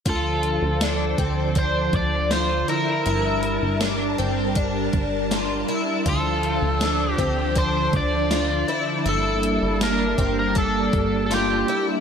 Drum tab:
HH |xxxxxxxx|xxxxxxxx|xxxxxxxx|xxxxxxxx|
SD |--o---o-|--o---o-|--o---o-|--o---o-|
BD |o--ooo--|----oo--|o--ooo--|---ooo--|